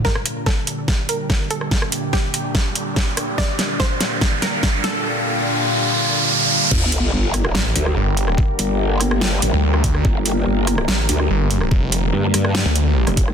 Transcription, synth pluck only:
X:1
M:4/4
L:1/8
Q:1/4=144
K:Gm
V:1 name="Synth pluck"
B z A3 B z A- | A2 G6 | d z c3 B z A | z8 |
z8 | z8 | z8 | z8 |]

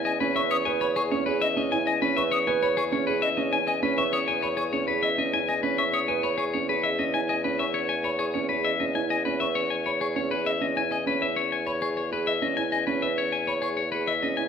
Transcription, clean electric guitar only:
X:1
M:6/4
L:1/8
Q:1/4=199
K:E
V:1 name="Clean electric guitar"
d B e c g c G c B e d g | d B e c g c G c B e d g | d B e c g c G c B e d g | d B e c g c G c B e d g |
d B e c g c G c B e d g | d B e c g c G c B e d g | d B e c g c G c B e d g | d B e c g c G c B e d g |]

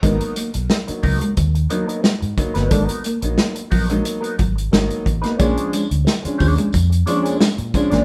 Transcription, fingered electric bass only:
X:1
M:4/4
L:1/16
Q:1/4=89
K:Abmix
V:1 name="Fingered electric bass" clef=bass
A,,, z2 _C,, z2 D,, z E,,2 z3 A,, z =G,,, | A,,, z2 B,,, z2 B,,,2 z2 A,,,2 A,,, z =A,,, z | B,,, z2 =D,, z2 E,, z F,,2 z3 B,, z =A,,, |]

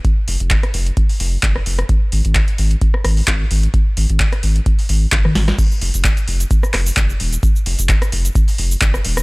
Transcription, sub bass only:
X:1
M:4/4
L:1/16
Q:"Swing 16ths" 1/4=130
K:Fm
V:1 name="Sub bass" clef=bass
z2 F,,, F,,, z2 F,,, z3 F,,, z F,,, z F,,, z | z2 A,,, A,,, z2 A,,, z3 A,,, z A,,, z A,,, z | z2 A,,, A,,, z2 A,,, z3 A,,, z _G,,, z A,,, z | z2 F,,, F,,, z2 F,,, z3 F,,, z F,,, z E,,, z |
z2 F,,, F,,, z2 F,,, z3 F,,, z F,,, z E,,, z |]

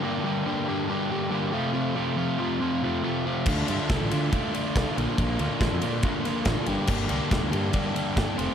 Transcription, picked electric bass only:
X:1
M:4/4
L:1/16
Q:1/4=140
K:Gdor
V:1 name="Picked electric bass" clef=bass
z16 | z16 | D,,2 G,, z C,, A,,, D,2 z4 C,, z B,,, z | B,,,2 D,, z A,,, F,, B,,2 z4 A,,, z G,,, z |
G,,,2 C,, z E,,, D,, G,,2 z4 G,,, z F,,, z |]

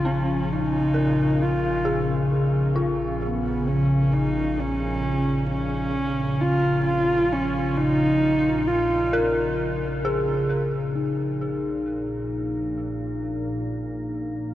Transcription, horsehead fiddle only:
X:1
M:4/4
L:1/8
Q:1/4=66
K:Bbm
V:1 name="Horsehead fiddle"
D E2 F2 z2 _C | D E D2 D2 F F | D E2 F2 z3 | z8 |]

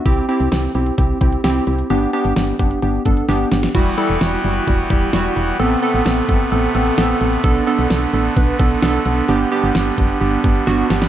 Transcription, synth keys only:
X:1
M:4/4
L:1/8
Q:1/4=130
K:Em
V:1 name="Synth keys"
[CEG] [CEG] [CEG] [CEG] [CEG] [CEG] [CEG] [CEG] | [B,DG] [B,DG] B, [B,DG] [B,DG] [B,DA] [B,DG] [B,DG] | [G,EF] [G,EA] [G,EF] [G,EF] [G,EF] [G,EG] [G,EF] [G,EF] | [B,CA] [B,CA] [B,CA] [B,CA] [B,CA] [B,CA] [B,CA] [B,CA] |
[B,DA] [B,DA] [B,DA] [B,DA] [B,DB] [B,DA] [B,DA] [B,DA] | [B,DG] [B,DG] [B,DG] [B,DG] [B,DG] [B,DG] [B,DF] [B,DG] |]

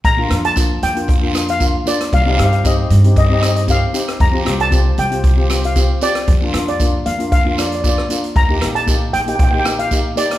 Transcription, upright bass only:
X:1
M:4/4
L:1/8
Q:"Swing 16ths" 1/4=116
K:Bb
V:1 name="Upright bass" clef=bass
B,,, F,,2 F,,4 z | C,, G,,2 G,,4 z | F,, C,,2 C,,4 z | F,, F,,2 F,,4 z |
E,, B,,,2 B,,,4 z |]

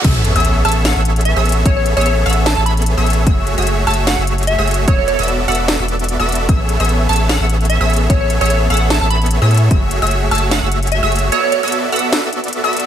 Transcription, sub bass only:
X:1
M:4/4
L:1/16
Q:"Swing 16ths" 1/4=149
K:A
V:1 name="Sub bass" clef=bass
A,,,3 A,,,3 A,,,3 A,,,4 A,,,3 | A,,,3 A,,,3 A,,,3 A,,,4 A,,,3 | F,,,3 F,,,3 F,,,3 F,,,4 F,,,3 | E,,,3 E,,,3 E,,,3 E,,,4 E,,,3 |
A,,,3 A,,,3 A,,,3 A,,,4 A,,,3 | A,,,3 A,,,3 A,,,3 A,,,4 A,,3 | F,,,3 F,,,3 F,,,3 F,,,4 F,,,3 | z16 |]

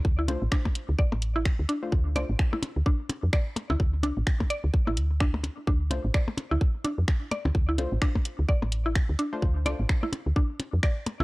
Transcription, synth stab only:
X:1
M:4/4
L:1/16
Q:"Swing 16ths" 1/4=128
K:Dm
V:1 name="Synth stab"
z2 [A,DFc] z12 [A,DFc] | z2 [A,DFc] z12 z | z16 | z2 [A,DFc] z12 z |
z2 [A,DFc] z12 [A,DFc] | z2 [A,DFc] z12 z |]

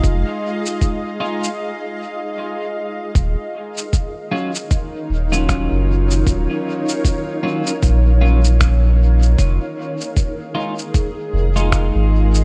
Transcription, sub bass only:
X:1
M:4/4
L:1/16
Q:"Swing 16ths" 1/4=77
K:Ebm
V:1 name="Sub bass" clef=bass
F,,, z12 z3 | E,,, z8 z E,,,3 G,,,3 | E,,, z6 z B,,,8 | F,,, z8 z F,,,3 A,,,3 |]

